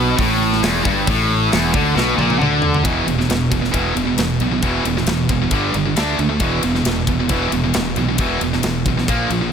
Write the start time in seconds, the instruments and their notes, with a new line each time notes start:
Already playing: fingered electric bass B1, distorted electric guitar B2
0.16 fingered electric bass A1, distorted electric guitar A2, kick, open hi-hat
0.21 distorted electric guitar A2
0.53 snare
0.62 fingered electric bass E1, distorted electric guitar E2, snare, open hi-hat
0.84 fingered electric bass G1, distorted electric guitar G2, kick
1.07 fingered electric bass A1, distorted electric guitar A2, kick, open hi-hat
1.50 fingered electric bass E1, distorted electric guitar E2, snare, open hi-hat
1.72 fingered electric bass D2, distorted electric guitar D3, kick
1.95 fingered electric bass B1, distorted electric guitar B2, snare
2.16 fingered electric bass A#1, distorted electric guitar A#2, high tom
2.30 high tom
2.39 fingered electric bass D2, distorted electric guitar D3, mid tom
2.62 floor tom
2.74 floor tom
2.85 fingered electric bass E1, distorted electric guitar E2 B2 E3, kick, ride
3.06 fingered electric bass E1, distorted electric guitar E2 B2, ride
3.19 distorted electric guitar E2 B2, snare
3.29 fingered electric bass E1, distorted electric guitar E2 B2, snare, ride
3.51 fingered electric bass E1, distorted electric guitar E2 B2, kick, ride
3.62 distorted electric guitar E2 B2, snare
3.73 fingered electric bass E1, distorted electric guitar E2 B2 E3, kick, ride
3.95 fingered electric bass E1, distorted electric guitar E2 B2, ride
4.07 distorted electric guitar E2 B2
4.18 fingered electric bass E1, distorted electric guitar E2 B2, snare, ride
4.40 fingered electric bass B1, distorted electric guitar E2 B2, ride
4.51 distorted electric guitar E2 B2
4.62 fingered electric bass E1, distorted electric guitar E2 B2 E3, kick, ride
4.85 fingered electric bass E1, distorted electric guitar E2 B2, ride
4.97 distorted electric guitar E2 B2, snare
5.06 fingered electric bass E1, distorted electric guitar E2 B2, snare, ride
5.29 fingered electric bass E1, distorted electric guitar E2 B2, kick, ride
5.42 distorted electric guitar E2 B2
5.51 fingered electric bass G1, distorted electric guitar G2 D3 G3, kick, ride
5.74 fingered electric bass G1, distorted electric guitar G2 D3, ride
5.85 distorted electric guitar G2 D3
5.96 fingered electric bass D2, distorted electric guitar D3 A3 D4, snare, ride
6.18 fingered electric bass D2, distorted electric guitar D3 A3, ride
6.29 distorted electric guitar D3 A3
6.40 fingered electric bass E1, distorted electric guitar E2 B2 E3, kick, ride
6.63 fingered electric bass E1, distorted electric guitar E2 B2, ride
6.75 distorted electric guitar E2 B2, snare
6.85 fingered electric bass E1, distorted electric guitar E2 B2, snare, ride
7.07 fingered electric bass E1, distorted electric guitar E2 B2, kick, ride
7.20 distorted electric guitar E2 B2
7.29 fingered electric bass E1, distorted electric guitar E2 B2 E3, kick, ride
7.51 fingered electric bass E1, distorted electric guitar E2 B2, ride
7.64 distorted electric guitar E2 B2
7.74 fingered electric bass E1, distorted electric guitar E2 B2, snare, ride
7.96 fingered electric bass B1, distorted electric guitar E2 B2, ride
8.09 distorted electric guitar E2 B2
8.18 fingered electric bass E1, distorted electric guitar E2 B2 E3, kick, ride
8.40 fingered electric bass E1, distorted electric guitar E2 B2, ride
8.53 distorted electric guitar E2 B2, snare
8.63 fingered electric bass E1, distorted electric guitar E2 B2, snare, ride
8.86 fingered electric bass B1, distorted electric guitar E2 B2, kick, ride
8.98 distorted electric guitar E2 B2, snare
9.08 fingered electric bass A#1, distorted electric guitar A#2 F3 A#3, kick, ride
9.30 fingered electric bass A#1, distorted electric guitar A#2 F3, ride
9.41 distorted electric guitar A#2 F3